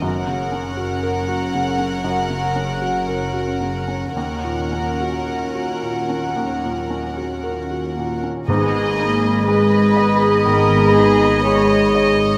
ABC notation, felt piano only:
X:1
M:4/4
L:1/16
Q:1/4=59
K:G#m
V:1 name="Felt piano"
F,, C, C F A F C, C F,, C, C F A F C, C | D,, A,, C F A F A,, C D,, A,, C F A F A,, C | G,,2 D2 G2 d2 D,2 D2 G2 d2 |]